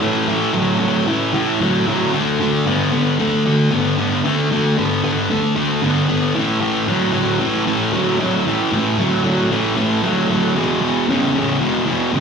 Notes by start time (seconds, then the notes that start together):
0.01 A2 E3
0.28 A2 E3
0.53 A2 F#3
0.80 A2 F#3
1.07 A2 E3
1.34 A2 E3
1.61 A2 F#3
1.87 A2 F#3
2.14 D3 A3
2.40 D3 A3
2.66 D3 B3
2.92 D3 B3
3.19 D3 A3
3.46 D3 A3
3.71 D3 B3
3.99 D3 B3
4.24 D3 A3
4.52 D3 A3
4.78 D3 B3
5.04 D3 B3
5.30 D3 A3
5.56 D3 A3
5.82 D3 B3
6.08 D3 B3
6.34 A2 E3
6.60 A2 E3
6.88 A2 F#3
7.13 A2 F#3
7.40 A2 E3
7.67 A2 E3
7.93 A2 F#3
8.20 A2 F#3
8.46 A2 E3
8.73 A2 E3
8.98 A2 F#3
9.24 A2 F#3
9.51 A2 E3
9.77 A2 E3
10.02 A2 F#3
10.29 A2 F#3
10.55 E2 B2
10.81 E2 B2
11.08 E2 C#3
11.34 E2 C#3
11.60 E2 B2
11.87 E2 B2
12.13 E2 C#3